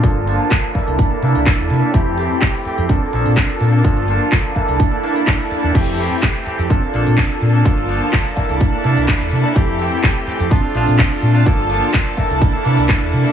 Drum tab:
CC |----------------|----------------|----------------|x---------------|
HH |x-o-x-oxx-oxx-o-|x-o-x-oxx-oxx-o-|xxoxx-oxx-oxxxox|x-o-x-oxx-oxx-o-|
CP |----x-------x---|----x-------x---|----x-------x---|----x-------x---|
BD |o---o-o-o---o---|o---o---o---o---|o---o-o-o---o---|o---o---o---o---|

CC |----------------|----------------|----------------|
HH |x-o-x-oxx-oxx-o-|x-o-x-oxx-oxx-o-|x-oxx-oxx-oxx-o-|
CP |----x-------x---|----x-------x---|----x-------x---|
BD |o---o-o-o---o---|o---o---o---o---|o---o-o-o---o---|